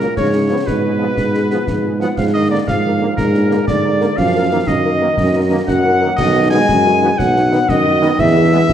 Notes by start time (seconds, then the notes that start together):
Already playing: A#2 A#4
0.00 F#3 A#3 C#4 A#4, snare
0.16 G#2 C#3 C#5, concert bass drum, snare, crash
0.33 B3 F4 G#4
0.49 F3 B3 F4 G#4
0.66 G#2 B2 B4, concert bass drum, snare
0.84 B3 F4 G#4
0.99 F3 B3 F4 G#4
1.17 G#2, concert bass drum, snare
1.34 B3 F4 G#4, snare
1.51 F3 B3 F4 G#4, snare
1.67 G#2, concert bass drum, snare
1.85 B3 F4 G#4
2.00 F3 F#3 B3 F4 G#4 F#5, snare
2.17 G#2 F3 F5, concert bass drum, snare, crash
2.34 D#3 A#3 D4 A#4 D#5
2.49 D3 A#3 D4 A#4 D5
2.67 G#2 F3 F5, concert bass drum, snare
2.85 A#3 D4 A#4
2.99 D3 A#3 D4 A#4
3.17 G#2 A#2 A#4, concert bass drum, snare
3.34 A#3 D4 A#4, snare
3.50 D3 A#3 D4 A#4, snare
3.67 G#2 D3 D5, concert bass drum, snare
3.84 A#3 D4 A#4
4.01 D3 A#3 D4 A#4, snare
4.17 F#2 F3 F5, concert bass drum, snare, crash
4.35 A#3 D#4 A#4
4.51 D#3 A#3 D#4 A#4
4.67 F#2 D#3 D#5, concert bass drum, snare
4.84 A#3 D#4 A#4
5.01 D#3 A#3 D#4 A#4
5.17 F#2, concert bass drum, snare
5.34 A#3 D#4 A#4
5.50 D#3 A#3 D#4 A#4
5.67 F#2 F#3 F#5, concert bass drum, snare
5.84 A#3 D#4 A#4
6.01 D#3 A#3 D#4 A#4
6.16 B1 D#3 D#5, concert bass drum, snare, crash
6.34 B3 D#4 F#4
6.50 D#3 G#3 B3 D#4 F#4 G#5
6.69 F#2, concert bass drum, snare
6.84 B3 D#4 F#4
7.01 D#3 B3 D#4 F#4
7.18 B1 F#3 F#5, concert bass drum, snare
7.35 B3 D#4 F#4, snare
7.51 D#3 B3 D#4 F#4, snare
7.68 F#2 D#3 D#5, concert bass drum, snare
7.85 B3 D#4 F#4
8.02 D#3 B3 D#4 F#4, snare
8.19 E2 E3 E5, concert bass drum, snare, crash
8.35 B3 E4 G#4
8.52 G#3 B3 E4 G#4
8.68 B1, concert bass drum, snare